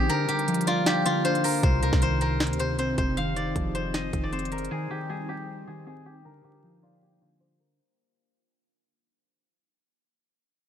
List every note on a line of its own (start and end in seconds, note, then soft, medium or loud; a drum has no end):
0.00 0.28 G4 medium
0.00 0.15 C5 medium
0.09 0.28 D3 loud
0.09 1.62 A#3 medium
0.09 1.62 D4 medium
0.09 1.62 F4 medium
0.09 1.44 A#4 loud
0.09 closed hi-hat medium
0.28 0.86 G4 medium
0.28 closed hi-hat medium
0.39 closed hi-hat soft
0.48 1.44 F3 medium
0.48 closed hi-hat medium
0.54 closed hi-hat medium
0.61 closed hi-hat medium
0.67 1.05 F4 medium
0.67 1.63 D5 medium
0.67 closed hi-hat medium
0.86 3.22 G4 medium
0.86 snare loud
0.86 closed hi-hat medium
1.06 1.63 D3 medium
1.06 3.58 F4 medium
1.06 closed hi-hat medium
1.25 1.63 D4 medium
1.25 1.63 C5 medium
1.25 closed hi-hat medium
1.35 closed hi-hat soft
1.44 1.82 A#4 medium
1.44 open hi-hat medium
1.63 1.92 C2 loud
1.63 3.16 C3 medium
1.63 1.81 C3 medium
1.63 4.68 C4 medium
1.63 6.21 D#4 medium
1.63 3.16 G4 medium
1.63 2.02 C5 medium
1.63 kick loud
1.63 closed hi-hat medium
1.83 2.58 C3 medium
1.83 2.21 A#4 medium
1.83 closed hi-hat medium
1.93 2.52 C2 loud
1.93 kick loud
1.93 snare medium
2.02 2.98 D#3 medium
2.02 2.59 C5 medium
2.02 closed hi-hat medium
2.21 4.33 A#4 medium
2.21 3.17 C5 medium
2.21 closed hi-hat medium
2.40 snare loud
2.40 closed hi-hat medium
2.47 2.76 D2 medium
2.47 closed hi-hat medium
2.53 closed hi-hat medium
2.60 3.17 C3 medium
2.60 2.78 C5 medium
2.60 closed hi-hat medium
2.74 2.97 C2 loud
2.79 3.17 C4 medium
2.79 2.97 C5 medium
2.79 closed hi-hat medium
2.98 3.53 F1 loud
2.98 3.74 C5 medium
2.98 kick medium
2.98 closed hi-hat medium
3.17 3.35 D#3 medium
3.17 4.70 F3 medium
3.17 4.70 G#4 medium
3.17 4.83 F5 loud
3.17 closed hi-hat medium
3.36 4.12 D#3 medium
3.36 4.00 D5 medium
3.36 closed hi-hat medium
3.56 4.11 F1 loud
3.56 4.52 F3 medium
3.56 kick medium
3.56 closed hi-hat medium
3.75 4.71 D#4 medium
3.75 4.32 C5 medium
3.75 closed hi-hat medium
3.94 4.29 D#5 medium
3.94 snare loud
3.94 closed hi-hat medium
4.13 4.69 F1 loud
4.13 4.70 D#3 medium
4.13 kick loud
4.13 closed hi-hat medium
4.23 6.08 D5 medium
4.32 4.71 C4 medium
4.32 6.30 C5 medium
4.32 closed hi-hat soft
4.39 closed hi-hat medium
4.45 closed hi-hat medium
4.52 6.25 A#4 medium
4.52 closed hi-hat medium
4.58 closed hi-hat medium
4.65 closed hi-hat medium
4.71 4.89 D#3 loud
4.71 6.23 G3 medium
4.71 6.23 G4 medium
4.71 4.96 G#4 medium
4.71 6.23 C5 medium
4.90 5.66 D#3 medium
4.90 5.15 G4 medium
5.09 6.06 G3 medium
5.09 5.35 G#4 medium
5.29 6.25 D#4 medium
5.29 5.73 G4 medium
5.67 6.25 D#3 medium
5.67 5.86 G#4 medium
5.87 6.25 C4 medium
5.87 6.12 G#4 medium
6.06 6.44 G4 medium
6.25 6.43 D3 medium
6.25 7.77 A#3 medium
6.25 7.77 D4 medium
6.25 7.77 F4 medium
6.25 7.59 A#4 medium
6.44 7.02 G4 medium
6.63 7.60 F3 medium
6.83 7.21 F4 medium
6.83 7.79 D5 medium
7.02 9.38 G4 medium
7.21 7.79 D3 medium
7.21 9.74 F4 medium
7.40 7.79 D4 medium
7.40 9.38 C5 medium
7.60 9.72 A#4 medium